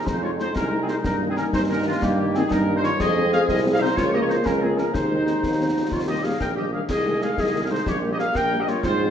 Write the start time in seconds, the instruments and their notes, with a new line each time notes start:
Already playing: trombone section G#3 D#4
0.05 tuba F2, woodwind section D#4, trumpet section C5, concert bass drum, snare
0.22 french horn section G#3 D#4, woodwind section F4, trumpet section C#5
0.39 french horn section G#3 D#4, woodwind section D#4, trumpet section C5, snare
0.55 tuba C2, woodwind section C#4, trumpet section A#4, concert bass drum, snare
0.72 french horn section G#3 D#4
0.81 woodwind section C4, trumpet section G#4
0.88 french horn section G#3 D#4, woodwind section D#4, trumpet section C5, snare
1.04 tuba G2, trombone section A#3 D#4, woodwind section D#4, trumpet section A#4, concert bass drum, snare
1.21 french horn section D#3 A#3 D#4
1.29 woodwind section C4, trumpet section G#4
1.37 french horn section D#3 A#3 D#4, woodwind section C#4, trumpet section A#4, snare
1.53 tuba G2, woodwind section D#4, trumpet section C5, concert bass drum, snare
1.69 french horn section D#3 A#3 D#4, woodwind section C#4, trumpet section A#4
1.86 french horn section D#3 A#3 D#4, woodwind section G#3, trumpet section F4
2.02 tuba G2, woodwind section A#3, trumpet section G4, concert bass drum, snare
2.18 french horn section D#3 A#3 D#4
2.35 french horn section D#3 A#3 D#4, woodwind section C4, trumpet section G#4, snare
2.51 tuba G2, woodwind section D#4, trumpet section A#4, concert bass drum, snare
2.67 french horn section D#3 A#3 D#4
2.76 woodwind section D#4, trumpet section C5
2.83 french horn section D#3 A#3 D#4, woodwind section F4, trumpet section C#5, snare
2.99 tuba F2, trombone section G#3 C4, woodwind section G#4, trumpet section D#5, concert bass drum, snare, crash
3.16 french horn section F3 G#3 C4
3.32 french horn section F3 G#3 C4, woodwind section G#4, trumpet section F5, snare
3.48 tuba C2, woodwind section G#4, trumpet section D#5, concert bass drum, snare
3.65 french horn section F3 G#3 C4
3.72 woodwind section G#4, trumpet section F5
3.81 french horn section F3 G#3 C4, woodwind section D#4, trumpet section C5
3.97 tuba C#2, trombone section F3 A#3, woodwind section F4, trumpet section C#5, concert bass drum, snare
4.13 french horn section F3 A#3, woodwind section G4, trumpet section D#5
4.21 woodwind section F4, trumpet section C#5
4.29 french horn section F3 A#3, woodwind section D#4, trumpet section C5, snare
4.45 tuba C#2, woodwind section C#4, trumpet section A#4, concert bass drum, snare
4.62 french horn section F3 A#3, woodwind section C4, trumpet section G#4
4.77 french horn section F3 A#3, woodwind section C#4, trumpet section A#4, snare
4.94 tuba D#2, trombone section D#3 G#3, woodwind section D#4, trumpet section C5, concert bass drum, snare
5.10 french horn section D#3 G#3 C4
5.26 french horn section D#3 G#3 C4, snare
5.43 tuba D#2, trombone section D#3, concert bass drum, snare
5.59 french horn section D#3 G#3 C4
5.75 french horn section D#3 G#3 C4, trombone section F3
5.92 tuba D#2, trombone section D#3, woodwind section F4, trumpet section C#5, concert bass drum, snare
6.08 french horn section D#3 G3 A#3, woodwind section G4, trumpet section D#5
6.17 trombone section G3
6.24 trombone section C#3, french horn section D#3 G3 A#3, woodwind section G#4, trumpet section F5
6.40 tuba A#1, trombone section D#3, woodwind section A#4, trumpet section G5, concert bass drum, snare
6.56 french horn section D#3 G3 A#3, trombone section F3, woodwind section G4, trumpet section D#5
6.73 french horn section D#3 G3 A#3, trombone section D#3, woodwind section G#4, trumpet section F5
6.89 tuba C2, trombone section D#3 G#3, woodwind section G#4, trumpet section D#5, concert bass drum, snare, crash
7.06 french horn section D#3 G#3
7.22 french horn section D#3 G#3, woodwind section G#4, trumpet section F5, snare
7.38 tuba C2, woodwind section G#4, trumpet section D#5, concert bass drum, snare
7.54 french horn section D#3 G#3
7.62 woodwind section G#4, trumpet section F5
7.70 french horn section D#3 G#3, woodwind section D#4, trumpet section C5
7.86 tuba A#1, trombone section G3 A#3, woodwind section G4, trumpet section C#5, concert bass drum, snare
8.03 french horn section G3 A#3
8.12 woodwind section G4, trumpet section D#5
8.19 french horn section G3 A#3, woodwind section G#4, trumpet section F5, snare
8.35 tuba A#1, woodwind section A#4, trumpet section G5, concert bass drum, snare
8.52 french horn section G3 A#3
8.60 woodwind section G4, trumpet section D#5
8.68 french horn section G3 A#3, woodwind section F4, trumpet section C#5, snare
8.83 tuba G#2, trombone section F3 C4, woodwind section F4, trumpet section C5, concert bass drum, snare
9.01 french horn section F3 G#3 C4